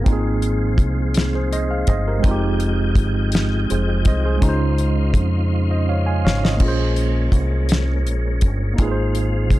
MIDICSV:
0, 0, Header, 1, 5, 480
1, 0, Start_track
1, 0, Tempo, 727273
1, 42, Time_signature, 6, 3, 24, 8
1, 6332, End_track
2, 0, Start_track
2, 0, Title_t, "Tine electric piano"
2, 0, Program_c, 0, 4
2, 0, Control_c, 0, 64, 127
2, 7, Note_on_c, 0, 58, 75
2, 26, Note_on_c, 0, 60, 66
2, 44, Note_on_c, 0, 63, 71
2, 49, Control_c, 0, 64, 0
2, 66, Note_on_c, 0, 65, 67
2, 84, Note_on_c, 0, 68, 79
2, 172, Control_c, 0, 64, 127
2, 769, Note_off_c, 0, 68, 0
2, 891, Note_on_c, 0, 72, 65
2, 893, Note_on_c, 0, 68, 54
2, 1001, Note_off_c, 0, 68, 0
2, 1001, Note_off_c, 0, 72, 0
2, 1008, Note_on_c, 0, 75, 72
2, 1009, Note_on_c, 0, 72, 59
2, 1119, Note_off_c, 0, 75, 0
2, 1120, Note_off_c, 0, 72, 0
2, 1127, Note_on_c, 0, 77, 73
2, 1238, Note_off_c, 0, 77, 0
2, 1244, Note_on_c, 0, 75, 73
2, 1246, Note_on_c, 0, 72, 59
2, 1357, Note_off_c, 0, 75, 0
2, 1358, Note_off_c, 0, 72, 0
2, 1370, Note_on_c, 0, 67, 50
2, 1370, Note_on_c, 0, 70, 62
2, 1438, Note_off_c, 0, 58, 0
2, 1447, Note_off_c, 0, 60, 0
2, 1447, Note_on_c, 0, 56, 76
2, 1456, Note_off_c, 0, 63, 0
2, 1468, Note_off_c, 0, 65, 0
2, 1470, Note_on_c, 0, 60, 72
2, 1483, Note_on_c, 0, 63, 72
2, 1489, Control_c, 0, 64, 0
2, 1503, Note_on_c, 0, 65, 73
2, 1517, Note_off_c, 0, 67, 0
2, 1525, Note_on_c, 0, 67, 85
2, 1594, Note_off_c, 0, 70, 0
2, 1625, Control_c, 0, 64, 127
2, 2445, Note_off_c, 0, 67, 0
2, 2445, Note_on_c, 0, 72, 69
2, 2449, Note_on_c, 0, 68, 54
2, 2672, Note_off_c, 0, 72, 0
2, 2673, Note_off_c, 0, 68, 0
2, 2689, Note_on_c, 0, 75, 75
2, 2692, Note_on_c, 0, 72, 62
2, 2799, Note_off_c, 0, 75, 0
2, 2800, Note_off_c, 0, 72, 0
2, 2807, Note_on_c, 0, 72, 68
2, 2811, Note_on_c, 0, 68, 59
2, 2878, Note_off_c, 0, 56, 0
2, 2885, Note_on_c, 0, 56, 70
2, 2889, Note_off_c, 0, 60, 0
2, 2896, Note_off_c, 0, 63, 0
2, 2905, Note_on_c, 0, 61, 69
2, 2906, Note_off_c, 0, 65, 0
2, 2923, Note_on_c, 0, 63, 73
2, 2930, Control_c, 0, 64, 0
2, 2942, Note_on_c, 0, 65, 69
2, 2953, Note_off_c, 0, 72, 0
2, 2961, Note_on_c, 0, 72, 84
2, 3035, Note_off_c, 0, 68, 0
2, 3050, Control_c, 0, 64, 127
2, 3647, Note_off_c, 0, 72, 0
2, 3768, Note_on_c, 0, 75, 62
2, 3771, Note_on_c, 0, 72, 51
2, 3879, Note_off_c, 0, 75, 0
2, 3881, Note_off_c, 0, 72, 0
2, 3888, Note_on_c, 0, 77, 70
2, 3889, Note_on_c, 0, 73, 57
2, 3997, Note_off_c, 0, 77, 0
2, 4000, Note_off_c, 0, 73, 0
2, 4002, Note_on_c, 0, 80, 71
2, 4005, Note_on_c, 0, 77, 54
2, 4115, Note_off_c, 0, 77, 0
2, 4116, Note_off_c, 0, 80, 0
2, 4123, Note_on_c, 0, 73, 58
2, 4123, Note_on_c, 0, 77, 68
2, 4236, Note_off_c, 0, 77, 0
2, 4237, Note_off_c, 0, 73, 0
2, 4250, Note_on_c, 0, 75, 61
2, 4251, Note_on_c, 0, 72, 49
2, 4317, Note_off_c, 0, 56, 0
2, 4327, Note_off_c, 0, 61, 0
2, 4331, Note_on_c, 0, 58, 72
2, 4336, Note_off_c, 0, 63, 0
2, 4345, Note_off_c, 0, 65, 0
2, 4351, Note_on_c, 0, 61, 66
2, 4369, Note_on_c, 0, 65, 65
2, 4371, Control_c, 0, 64, 0
2, 4387, Note_on_c, 0, 68, 65
2, 4401, Note_off_c, 0, 72, 0
2, 4409, Note_on_c, 0, 72, 85
2, 4474, Note_off_c, 0, 75, 0
2, 4477, Control_c, 0, 64, 127
2, 5758, Note_off_c, 0, 58, 0
2, 5766, Note_on_c, 0, 58, 68
2, 5770, Note_off_c, 0, 61, 0
2, 5779, Note_off_c, 0, 65, 0
2, 5781, Note_on_c, 0, 63, 69
2, 5788, Note_off_c, 0, 68, 0
2, 5799, Note_off_c, 0, 72, 0
2, 5801, Note_on_c, 0, 65, 68
2, 5811, Control_c, 0, 64, 0
2, 5822, Note_on_c, 0, 68, 73
2, 5840, Note_on_c, 0, 71, 64
2, 5864, Note_off_c, 0, 71, 0
2, 5883, Note_on_c, 0, 72, 84
2, 5938, Control_c, 0, 64, 127
2, 6332, Note_off_c, 0, 58, 0
2, 6332, Note_off_c, 0, 63, 0
2, 6332, Note_off_c, 0, 65, 0
2, 6332, Note_off_c, 0, 68, 0
2, 6332, Note_off_c, 0, 72, 0
2, 6332, End_track
3, 0, Start_track
3, 0, Title_t, "Tonewheel organ"
3, 0, Program_c, 1, 16
3, 0, Note_on_c, 1, 56, 63
3, 46, Note_on_c, 1, 60, 76
3, 47, Note_on_c, 1, 53, 71
3, 1460, Note_off_c, 1, 56, 0
3, 1469, Note_off_c, 1, 60, 0
3, 1469, Note_on_c, 1, 56, 86
3, 1470, Note_on_c, 1, 79, 68
3, 1473, Note_on_c, 1, 63, 66
3, 2898, Note_off_c, 1, 53, 0
3, 2901, Note_off_c, 1, 56, 0
3, 2901, Note_off_c, 1, 79, 0
3, 2917, Note_on_c, 1, 49, 68
3, 2918, Note_on_c, 1, 65, 73
3, 2921, Note_on_c, 1, 72, 65
3, 4331, Note_off_c, 1, 63, 0
3, 4345, Note_off_c, 1, 49, 0
3, 4346, Note_off_c, 1, 65, 0
3, 4347, Note_off_c, 1, 72, 0
3, 4359, Note_on_c, 1, 61, 72
3, 4360, Note_on_c, 1, 56, 73
3, 4360, Note_on_c, 1, 58, 65
3, 5781, Note_off_c, 1, 56, 0
3, 5786, Note_off_c, 1, 61, 0
3, 5787, Note_off_c, 1, 58, 0
3, 5789, Note_on_c, 1, 56, 70
3, 5789, Note_on_c, 1, 65, 78
3, 5793, Note_on_c, 1, 60, 67
3, 6332, Note_off_c, 1, 56, 0
3, 6332, Note_off_c, 1, 60, 0
3, 6332, Note_off_c, 1, 65, 0
3, 6332, End_track
4, 0, Start_track
4, 0, Title_t, "Fingered electric bass"
4, 0, Program_c, 2, 33
4, 48, Note_on_c, 2, 32, 119
4, 519, Note_off_c, 2, 32, 0
4, 519, Note_on_c, 2, 36, 89
4, 1214, Note_off_c, 2, 36, 0
4, 1243, Note_on_c, 2, 31, 91
4, 1459, Note_off_c, 2, 31, 0
4, 1484, Note_on_c, 2, 29, 108
4, 1954, Note_off_c, 2, 29, 0
4, 1954, Note_on_c, 2, 31, 91
4, 2411, Note_off_c, 2, 31, 0
4, 2452, Note_on_c, 2, 29, 100
4, 2663, Note_off_c, 2, 29, 0
4, 2682, Note_on_c, 2, 36, 82
4, 2898, Note_off_c, 2, 36, 0
4, 2921, Note_on_c, 2, 37, 116
4, 3375, Note_off_c, 2, 37, 0
4, 3395, Note_on_c, 2, 41, 84
4, 4127, Note_on_c, 2, 32, 80
4, 4137, Note_off_c, 2, 41, 0
4, 4341, Note_off_c, 2, 32, 0
4, 4361, Note_on_c, 2, 34, 106
4, 4815, Note_off_c, 2, 34, 0
4, 4835, Note_on_c, 2, 36, 88
4, 5325, Note_off_c, 2, 36, 0
4, 5325, Note_on_c, 2, 34, 93
4, 5565, Note_on_c, 2, 31, 82
4, 5574, Note_off_c, 2, 34, 0
4, 5779, Note_off_c, 2, 31, 0
4, 5800, Note_on_c, 2, 32, 114
4, 6279, Note_off_c, 2, 32, 0
4, 6279, Note_on_c, 2, 36, 90
4, 6332, Note_off_c, 2, 36, 0
4, 6332, End_track
5, 0, Start_track
5, 0, Title_t, "Drums"
5, 41, Note_on_c, 9, 36, 123
5, 42, Note_on_c, 9, 42, 70
5, 107, Note_off_c, 9, 36, 0
5, 108, Note_off_c, 9, 42, 0
5, 279, Note_on_c, 9, 42, 45
5, 345, Note_off_c, 9, 42, 0
5, 514, Note_on_c, 9, 36, 87
5, 520, Note_on_c, 9, 42, 53
5, 580, Note_off_c, 9, 36, 0
5, 586, Note_off_c, 9, 42, 0
5, 755, Note_on_c, 9, 42, 74
5, 775, Note_on_c, 9, 38, 114
5, 821, Note_off_c, 9, 42, 0
5, 841, Note_off_c, 9, 38, 0
5, 1007, Note_on_c, 9, 42, 47
5, 1073, Note_off_c, 9, 42, 0
5, 1234, Note_on_c, 9, 42, 54
5, 1239, Note_on_c, 9, 36, 85
5, 1300, Note_off_c, 9, 42, 0
5, 1305, Note_off_c, 9, 36, 0
5, 1478, Note_on_c, 9, 36, 118
5, 1478, Note_on_c, 9, 42, 70
5, 1544, Note_off_c, 9, 36, 0
5, 1544, Note_off_c, 9, 42, 0
5, 1715, Note_on_c, 9, 42, 42
5, 1781, Note_off_c, 9, 42, 0
5, 1950, Note_on_c, 9, 36, 86
5, 1954, Note_on_c, 9, 42, 53
5, 2016, Note_off_c, 9, 36, 0
5, 2020, Note_off_c, 9, 42, 0
5, 2191, Note_on_c, 9, 42, 75
5, 2211, Note_on_c, 9, 38, 112
5, 2257, Note_off_c, 9, 42, 0
5, 2277, Note_off_c, 9, 38, 0
5, 2443, Note_on_c, 9, 42, 49
5, 2509, Note_off_c, 9, 42, 0
5, 2673, Note_on_c, 9, 42, 58
5, 2677, Note_on_c, 9, 36, 90
5, 2739, Note_off_c, 9, 42, 0
5, 2743, Note_off_c, 9, 36, 0
5, 2917, Note_on_c, 9, 36, 117
5, 2918, Note_on_c, 9, 42, 67
5, 2983, Note_off_c, 9, 36, 0
5, 2984, Note_off_c, 9, 42, 0
5, 3157, Note_on_c, 9, 42, 42
5, 3223, Note_off_c, 9, 42, 0
5, 3391, Note_on_c, 9, 36, 89
5, 3397, Note_on_c, 9, 42, 56
5, 3457, Note_off_c, 9, 36, 0
5, 3463, Note_off_c, 9, 42, 0
5, 4136, Note_on_c, 9, 38, 103
5, 4202, Note_off_c, 9, 38, 0
5, 4256, Note_on_c, 9, 38, 97
5, 4322, Note_off_c, 9, 38, 0
5, 4355, Note_on_c, 9, 49, 86
5, 4357, Note_on_c, 9, 36, 108
5, 4421, Note_off_c, 9, 49, 0
5, 4423, Note_off_c, 9, 36, 0
5, 4596, Note_on_c, 9, 42, 45
5, 4662, Note_off_c, 9, 42, 0
5, 4831, Note_on_c, 9, 36, 92
5, 4837, Note_on_c, 9, 42, 54
5, 4897, Note_off_c, 9, 36, 0
5, 4903, Note_off_c, 9, 42, 0
5, 5074, Note_on_c, 9, 42, 75
5, 5095, Note_on_c, 9, 38, 115
5, 5140, Note_off_c, 9, 42, 0
5, 5161, Note_off_c, 9, 38, 0
5, 5324, Note_on_c, 9, 42, 46
5, 5390, Note_off_c, 9, 42, 0
5, 5552, Note_on_c, 9, 42, 60
5, 5558, Note_on_c, 9, 36, 86
5, 5618, Note_off_c, 9, 42, 0
5, 5624, Note_off_c, 9, 36, 0
5, 5797, Note_on_c, 9, 42, 70
5, 5798, Note_on_c, 9, 36, 110
5, 5863, Note_off_c, 9, 42, 0
5, 5864, Note_off_c, 9, 36, 0
5, 6038, Note_on_c, 9, 42, 47
5, 6104, Note_off_c, 9, 42, 0
5, 6273, Note_on_c, 9, 36, 85
5, 6279, Note_on_c, 9, 42, 56
5, 6332, Note_off_c, 9, 36, 0
5, 6332, Note_off_c, 9, 42, 0
5, 6332, End_track
0, 0, End_of_file